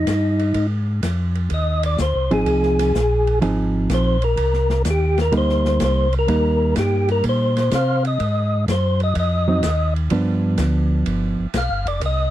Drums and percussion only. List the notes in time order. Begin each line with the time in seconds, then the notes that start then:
0.07 kick, snare, hi-hat pedal, ride
0.39 ride
0.54 kick, ride
1.03 kick, snare, hi-hat pedal, ride
1.35 ride
1.50 kick, ride
1.83 ride
1.98 kick, snare, hi-hat pedal
2.31 ride
2.46 kick, ride
2.63 snare
2.79 snare, ride
2.95 kick, snare, hi-hat pedal
3.27 ride
3.42 kick, ride
3.90 kick, snare, hi-hat pedal, ride
4.22 ride
4.37 kick, ride
4.54 snare
4.70 snare
4.85 kick, snare, hi-hat pedal, ride
5.18 snare, ride
5.32 kick, ride
5.49 snare
5.65 snare
5.80 kick, snare, hi-hat pedal, ride
6.13 ride
6.28 kick, ride
6.76 kick, snare, hi-hat pedal, ride
7.09 ride
7.24 kick, ride
7.57 snare, ride
7.71 kick, snare, hi-hat pedal, ride
8.05 ride
8.20 kick, ride
8.68 kick, snare, hi-hat pedal, ride
9.00 ride
9.15 kick, ride
9.63 kick, snare, hi-hat pedal, ride
9.96 ride
10.10 kick, ride
10.58 kick, snare, hi-hat pedal, ride
11.06 kick, ride
11.54 kick, snare, hi-hat pedal, ride
11.87 ride
12.01 kick, ride